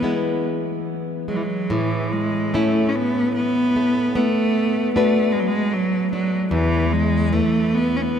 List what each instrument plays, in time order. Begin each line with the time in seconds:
Already playing: nylon-string guitar E3, cello B3
0.03 nylon-string guitar G#3 B3 E4
1.28 cello F#3, nylon-string guitar G#3
1.36 cello E3
1.43 cello F#3
1.70 nylon-string guitar A2, cello E3
2.12 cello G#3
2.54 cello A3, nylon-string guitar A3 C#4 E4
2.89 cello C#4
2.95 cello B3
3.35 cello B3
3.76 nylon-string guitar A3
4.15 cello A3, nylon-string guitar B3
4.95 cello A3, nylon-string guitar D4 F#4 B4
5.32 cello G#3
5.40 cello F#3
5.48 cello G#3
5.73 cello F#3
6.12 cello F#3, nylon-string guitar D4
6.51 nylon-string guitar E2, cello E3
6.93 cello G#3
7.33 nylon-string guitar E3, cello A3
7.74 cello B3
7.96 cello C#4
8.02 cello B3